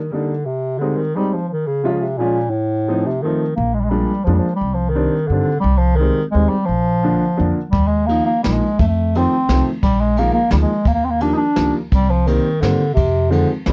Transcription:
Already playing: D#3
0.11 D3 G3 A#3 D4 D#4
0.45 C3
0.79 D3 G3 G#3 C4 D#4
0.97 D#3
1.16 G3 G#3 C4 D#4
1.33 F3
1.48 D#3 F3
1.67 C#3
1.83 C3 F3 G#3 C#4 F4
1.92 C#3
2.01 C3
2.18 A#2 F3 G#3 C#4 F4
2.50 A2
2.88 F3 A3 C4 D#4
3.06 C3
3.22 D#3 F3 A3 C4 D#4
3.55 A#1 A#3
3.74 G#3
3.80 G3
3.84 G#3
3.90 F3 G3 G#3 A#3 D4
4.24 F2 F3 A#3
4.28 G#3 D4
4.34 G3
4.38 F3
4.56 G3
4.61 C2
4.74 F3
4.90 D#3
4.95 D#3 G3 C4 D4
5.27 G2 D3 D#3 G3
5.32 C4 D4
5.60 C2 G3
5.78 F3
5.96 D#3 G3
6.01 G#3 C4
6.31 D#2 D#3 G3 G#3 C4
6.49 G3
6.65 A#1 F3
7.03 D3 F3 A#3 D4
7.37 F2 D3 F3 A#3 D4
7.70 D#2 G3, kick, ride
7.87 G#3
8.06 D#3 F3 A#3 D#4, ride
8.26 A#3
8.43 A#1 D#3 F3 G3 A#3 D#4, snare, ride
8.53 G#3
8.79 F2 A3, kick, ride
8.87 A3
9.15 D#3 F3 A3 C4, ride
9.49 C2 D#3 F3 A3 C4, snare, ride
9.83 A#1 G3, kick, ride
10.00 G#3
10.17 D#3 F3 G#3 A#3, ride
10.34 A#3
10.50 D2 D#3 F3 G3 G#3 A#3, snare, ride
10.61 G#3
10.86 D#2 A#3, kick, ride
10.94 A#3
11.05 C4
11.10 A#3
11.20 D#3 F3 G3 A#3 D4, ride
11.34 D4 D#4
11.56 C#2 D#3 F3 G3 A#3, snare, ride
11.91 C2 G3, kick, ride
12.10 F3
12.27 D#3 G3 A#3 C4, ride
12.61 G2 D3 D#3 G3 A#3 C4, snare, ride
12.94 F2 C3, kick, ride
13.30 D3 D#3 F3 G#3 C4, ride
13.66 C2 D#3 F3 G3 G#3 C4, snare, ride

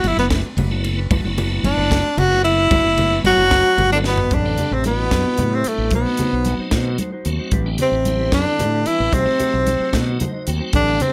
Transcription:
Already playing: F#3 A3 B3 E4
0.04 G1 E4, ride, high conga
0.17 F#1 B3 D4 F#4 B4, low conga
0.30 A3 D4 F#4 B4, kick, snare, ride
0.57 F#1 A3 D4 F#4 B4, ride, high conga, low conga
0.71 F#3 A3 B3 D4 E4 F#4 B4
0.84 ride, low conga
0.97 D4 F#4 B4
1.10 G1 F#3 A3 B3 D4 E4 F#4 B4, kick, ride, high conga
1.24 F#1 F#3 A3 B3 E4, low conga
1.37 A3 D4 F#4 B4, ride, low conga
1.51 D4 F#4 B4
1.63 G1 D4, ride, high conga
1.77 F#1 D4 F#4 B4
1.90 A3 D4 F#4 B4, kick, snare, ride
2.17 F#1 A3 D4 F#4 B4, ride, low conga
2.31 F#3 A3 B3 D4 E4 F#4 B4
2.44 E4, ride, low conga
2.57 D4 F#4 B4
2.71 G1 F#3 A3 B3 D4 F#4 B4, kick, ride, high conga
2.84 F#1 F#3 A3 B3 E4
2.97 A3 D4 F#4 B4, ride, low conga
3.11 D4 F#4 B4
3.24 G1 F#3 F#4, ride, high conga
3.37 F#1 D4 F#4 B4, low conga
3.51 A3 D4 B4, kick, snare, ride, low conga
3.77 G1 A3 D4 F#4 B4, ride, high conga, low conga
3.91 D3 F#3 A3 B3 D4 E4 F#4 B4, low conga
4.04 B2 B3, snare
4.18 D4 F#4 B4, floor tom, low conga
4.31 A1 C4 D4 G4 B4, kick, closed hi-hat, high conga, low conga
4.36 D3
4.45 G3 B3 C4 D4
4.58 C4 D4 G4 B4, closed hi-hat, low conga
4.71 A1 C4 D4 G4 B4, low conga
4.77 C3
4.84 G3 B3 D4 E4, closed hi-hat, high conga
4.90 B2
4.99 D4 G4 B4
5.11 F#2 C4 D4 G4 B4, kick, snare, closed hi-hat
5.26 muted fretless electric bass stroke, low conga
5.38 A2 C4 D4 G4 B4, closed hi-hat, high conga, low conga
5.52 C3 C4 D4 G4 B4
5.64 G3 A3 B3 C4 D4, muted fretless electric bass stroke, closed hi-hat, low conga
5.69 A2
5.78 A1 D4 G4 B4, low conga
5.91 B1 B2 A3 D#4 F#4 C5, kick, closed hi-hat, high conga, low conga
5.95 B3
6.06 F#3 A3 C4 D#4
6.17 A3 D#4 F#4 C5, muted fretless electric bass stroke, closed hi-hat, low conga
6.33 B1 D#4 F#4 C5
6.45 F#3 A3 C4 D#4, closed hi-hat, high conga
6.59 D#4 F#4 C5
6.71 B2 A3 D#4 F#4 C5, kick, snare, closed hi-hat
6.98 A3 D#4 F#4 C5, closed hi-hat, high conga
7.12 D#4 F#4 C5
7.25 D#2 F#3 A3 C4 F#4, closed hi-hat, low conga
7.39 D#4 F#4 C5, low conga
7.51 A1 C4 D4 G4 B4, kick, closed hi-hat, high conga, low conga
7.66 G3 B3 C4 D4
7.78 C3 C4 D4 G4 B4, closed hi-hat, low conga
7.92 A1 D4 G4 B4
8.05 G3 B3 C4 E4, closed hi-hat, high conga
8.20 D4 G4 B4
8.32 F#2 D3 C4 D4 G4 B4, kick, snare, closed hi-hat
8.45 muted fretless electric bass stroke, low conga
8.59 A2 C4 D4 G4 B4, closed hi-hat, high conga, low conga
8.73 D4 G4 B4
8.86 E3 G3 B3 C4 D4 E4, muted fretless electric bass stroke, closed hi-hat, low conga
9.00 A1 D4 G4 B4, low conga
9.13 B1 C3 A3 C4 D#4 F#4 C5, kick, closed hi-hat, high conga
9.26 F#3 A3 C4 D#4, low conga
9.40 A3 D#4 F#4 C5, muted fretless electric bass stroke, closed hi-hat, low conga
9.53 B1 D#4 F#4 C5
9.67 F#3 A3 C4 D#4, closed hi-hat, high conga, low conga
9.80 D#4 F#4 C5
9.92 B2 A3 D#4 F#4 C5, kick, snare, closed hi-hat, low conga
10.08 low conga
10.20 A3 D#4 F#4 C5 D#5, closed hi-hat, high conga, low conga
10.33 D#4 F#4 C5
10.47 D#2 F#3 A3 C4 F#4 G5, closed hi-hat
10.61 D#4 F#4 C5
10.73 A1 D3 C4 D4 G4 B4, kick, closed hi-hat, high conga, low conga
10.88 G3 B3 C4 D4
11.00 C3 C4 D4 G4 B4, closed hi-hat, low conga

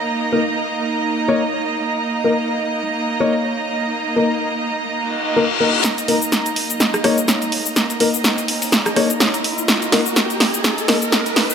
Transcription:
Already playing: A#3 D#4 D#5 A#5
0.32 A#3 D#4 A#4
1.28 A#3 D#4 C#5
2.24 A#3 D#4 A#4
3.20 A#3 D#4 C#5
4.16 A#3 D#4 A#4
4.88 reverse cymbal
5.36 A#3 D#4 A#4
5.60 A#3 D#4 A#4
5.84 snare, closed hi-hat, riser, cabasa
5.98 closed hi-hat, cabasa
6.08 A#3 D#4 A#4, open hi-hat
6.22 cabasa
6.32 snare, closed hi-hat, cabasa
6.46 closed hi-hat, cabasa
6.56 open hi-hat
6.70 closed hi-hat, cabasa
6.80 snare, closed hi-hat, cabasa
6.94 cross-stick, closed hi-hat, cabasa
7.04 A#3 D#4 C#5, cross-stick, open hi-hat
7.18 cabasa
7.28 snare, closed hi-hat, cabasa
7.42 closed hi-hat, cabasa
7.52 open hi-hat
7.66 cabasa
7.76 snare, closed hi-hat, cabasa
7.90 closed hi-hat, cabasa
8.00 A#3 D#4 A#4, open hi-hat
8.14 cabasa
8.24 snare, closed hi-hat, cabasa
8.38 closed hi-hat, cabasa
8.48 open hi-hat
8.62 open hi-hat, cabasa
8.72 snare, closed hi-hat, cabasa
8.86 cross-stick, closed hi-hat, cabasa
8.96 A#3 D#4 C#5, cross-stick, open hi-hat
9.10 closed hi-hat, cabasa
9.20 snare, closed hi-hat, cabasa
9.34 closed hi-hat, cabasa
9.44 open hi-hat
9.58 cabasa
9.68 snare, closed hi-hat, cabasa
9.82 closed hi-hat, cabasa
9.92 A#3 D#4 A#4, snare, open hi-hat
10.06 cabasa
10.16 snare, closed hi-hat, cabasa
10.30 closed hi-hat, cabasa
10.40 snare, open hi-hat
10.54 closed hi-hat, cabasa
10.64 snare, closed hi-hat, cabasa
10.78 closed hi-hat, cabasa
10.88 A#3 D#4 A#4, snare, open hi-hat
11.02 closed hi-hat, cabasa
11.12 snare, closed hi-hat, cabasa
11.26 closed hi-hat, cabasa
11.36 snare, open hi-hat
11.50 cabasa

